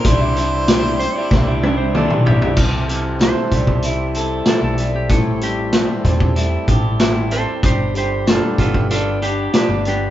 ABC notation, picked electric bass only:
X:1
M:4/4
L:1/16
Q:1/4=95
K:C
V:1 name="Picked electric bass" clef=bass
C,,8 C,,6 A,,, B,,, | C,,6 C,,6- C,, B,,,3 | A,,,6 E,,4 A,,,6 | G,,,6 G,,,6- G,,, G,,,3 |]